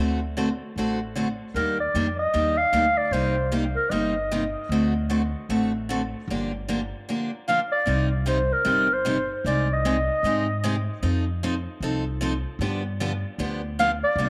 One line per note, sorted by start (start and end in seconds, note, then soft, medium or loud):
0.00 0.60 D2 medium
0.00 0.19 D3 medium
0.00 0.19 A3 medium
0.00 0.19 C4 medium
0.00 0.19 F#4 medium
0.00 0.19 A4 medium
0.37 0.48 D3 medium
0.37 0.48 A3 medium
0.37 0.48 C4 medium
0.37 0.48 F#4 medium
0.37 0.48 A4 medium
0.76 1.39 A1 medium
0.76 0.98 D3 medium
0.76 0.98 A3 medium
0.76 0.99 C4 medium
0.76 0.99 F#4 medium
0.76 0.99 A4 medium
1.15 1.27 D3 medium
1.15 1.27 A3 medium
1.15 1.27 C4 medium
1.15 1.27 F#4 medium
1.15 1.28 A4 medium
1.54 1.86 D#2 medium
1.54 1.77 D#3 medium
1.54 1.77 G3 medium
1.54 1.77 A#3 medium
1.54 1.77 D4 medium
1.54 1.77 G4 medium
1.54 1.79 A#4 medium
1.80 2.17 D5 medium
1.94 2.28 F2 medium
1.94 2.06 D#3 medium
1.94 2.06 G3 medium
1.94 2.06 A#3 medium
1.94 2.06 D4 medium
1.94 2.06 G4 medium
2.19 2.59 D#5 medium
2.34 2.67 D#2 medium
2.34 2.55 D#3 medium
2.34 2.55 G3 medium
2.34 2.55 A#3 medium
2.34 2.55 D4 medium
2.34 2.56 G4 medium
2.58 2.99 F5 loud
2.73 3.06 D2 medium
2.73 2.84 D#3 medium
2.73 2.84 G3 medium
2.73 2.85 A#3 medium
2.73 2.85 D4 medium
2.73 2.85 G4 medium
2.97 3.14 D5 medium
3.11 3.75 C2 medium
3.11 3.34 C3 medium
3.11 3.34 G3 medium
3.11 3.34 A#3 medium
3.11 3.35 D#4 medium
3.11 3.35 G4 medium
3.11 3.52 C5 medium
3.52 3.63 C3 medium
3.52 3.63 G3 medium
3.52 3.63 A#3 medium
3.52 3.63 D#4 medium
3.52 3.64 G4 medium
3.76 3.92 A#4 medium
3.90 4.54 G1 medium
3.90 4.13 C3 medium
3.90 4.13 G3 medium
3.90 4.13 A#3 medium
3.90 4.13 D#4 medium
3.90 4.13 G4 medium
3.90 4.55 D#5 medium
4.31 4.43 C3 medium
4.31 4.43 G3 medium
4.31 4.43 A#3 medium
4.31 4.43 D#4 medium
4.31 4.43 G4 medium
4.69 5.33 D2 medium
4.69 4.93 D3 medium
4.69 4.93 A3 medium
4.69 4.93 C4 medium
4.69 4.93 F#4 medium
4.69 4.93 A4 medium
5.10 5.21 D3 medium
5.10 5.21 A3 medium
5.10 5.21 C4 medium
5.10 5.21 F#4 medium
5.10 5.22 A4 medium
5.49 6.12 A1 medium
5.49 5.71 D3 medium
5.49 5.71 A3 medium
5.49 5.71 C4 medium
5.49 5.71 F#4 medium
5.49 5.71 A4 medium
5.89 6.00 D3 medium
5.89 6.01 A3 medium
5.89 6.01 C4 medium
5.89 6.01 F#4 medium
5.89 6.01 A4 medium
6.28 6.91 G1 medium
6.28 6.51 D3 medium
6.28 6.51 F3 medium
6.28 6.51 A#3 medium
6.28 6.51 D4 medium
6.28 6.51 G4 medium
6.68 6.79 D3 medium
6.68 6.80 F3 medium
6.68 6.80 A#3 medium
6.68 6.80 D4 medium
6.68 6.80 G4 medium
7.09 7.29 D3 medium
7.09 7.30 F3 medium
7.09 7.30 A#3 medium
7.09 7.30 D4 medium
7.09 7.30 G4 medium
7.48 7.59 D3 medium
7.48 7.59 F3 medium
7.48 7.59 A#3 medium
7.48 7.59 D4 medium
7.48 7.60 G4 medium
7.48 7.59 F5 medium
7.72 8.09 D5 medium
7.86 8.50 C2 medium
7.86 8.07 C3 medium
7.86 8.08 G3 medium
7.86 8.08 C4 medium
7.86 8.08 D#4 medium
7.86 8.08 G4 medium
8.26 8.37 C3 medium
8.26 8.37 G3 medium
8.26 8.38 C4 medium
8.26 8.38 D#4 medium
8.26 8.38 G4 medium
8.26 8.54 C5 medium
8.53 8.95 A#4 medium
8.65 9.29 G1 medium
8.65 8.86 C3 medium
8.65 8.87 G3 medium
8.65 8.86 C4 medium
8.65 8.87 D#4 medium
8.65 8.87 G4 medium
8.93 9.31 C5 medium
9.05 9.16 C3 medium
9.05 9.16 G3 medium
9.05 9.17 C4 medium
9.05 9.17 D#4 medium
9.05 9.17 G4 medium
9.45 10.07 C2 medium
9.45 9.67 C3 medium
9.45 9.67 G#3 medium
9.45 9.67 C4 medium
9.45 9.67 D#4 medium
9.45 9.67 G4 medium
9.45 9.74 D5 medium
9.73 10.89 D#5 medium
9.85 9.96 C3 medium
9.85 9.96 G#3 medium
9.85 9.96 C4 medium
9.85 9.96 D#4 medium
9.85 9.96 G4 medium
10.23 10.86 G#2 medium
10.23 10.45 C3 medium
10.23 10.46 G#3 medium
10.23 10.46 C4 medium
10.23 10.46 D#4 medium
10.23 10.46 G4 medium
10.64 10.74 C3 medium
10.64 10.75 G#3 medium
10.64 10.75 C4 medium
10.64 10.75 D#4 medium
10.64 10.75 G4 medium
11.03 11.65 F2 medium
11.03 11.24 F3 medium
11.03 11.24 C4 medium
11.03 11.24 D#4 medium
11.03 11.24 A4 medium
11.43 11.54 F3 medium
11.43 11.54 C4 medium
11.43 11.54 D#4 medium
11.43 11.54 A4 medium
11.80 12.44 C2 medium
11.80 12.03 F3 medium
11.80 12.03 C4 medium
11.80 12.03 D#4 medium
11.80 12.04 A4 medium
12.21 12.32 F3 medium
12.21 12.32 C4 medium
12.21 12.32 D#4 medium
12.21 12.33 A4 medium
12.59 13.22 G2 medium
12.59 12.82 D3 medium
12.59 12.82 F3 medium
12.59 12.82 B3 medium
12.59 12.82 D4 medium
12.59 12.82 G4 medium
13.00 13.11 D3 medium
13.00 13.11 F3 medium
13.00 13.11 B3 medium
13.00 13.12 D4 medium
13.00 13.11 G4 medium
13.38 14.01 D2 medium
13.38 13.60 D3 medium
13.38 13.60 F3 medium
13.38 13.61 B3 medium
13.38 13.61 D4 medium
13.38 13.61 G4 medium
13.79 13.90 D3 medium
13.79 13.90 F3 medium
13.79 13.90 B3 medium
13.79 13.90 D4 medium
13.79 13.91 G4 medium
13.79 13.90 F5 loud
14.04 14.29 D5 medium
14.16 14.29 C2 medium
14.16 14.29 C3 medium
14.16 14.29 G3 medium
14.16 14.29 A#3 medium
14.16 14.29 D#4 medium
14.20 14.29 G4 medium